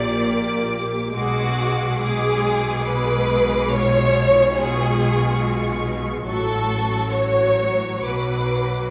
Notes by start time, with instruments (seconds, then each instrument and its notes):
Already playing: double bass section A#1, cello section A#2, viola section A#3 G4, violin section D5 D6
1.14 double bass section B1, cello section B2, viola section G#3 G#4, violin section F#4 D6
2.00 viola section G#3 G#4, violin section G#4 D6
2.84 viola section G#3 G#4, violin section B4 D6
3.71 viola section G#3 F4, violin section C#5 C#6
4.56 viola section G#3 F4, violin section G#4 C#6
6.27 double bass section A1, cello section A2, viola section F#3 F#4, violin section A4 C#6
7.12 viola section F#3 F#4, violin section C#5 C#6
8.04 double bass section B1, cello section B2, viola section F#3 F#4, violin section B4 D6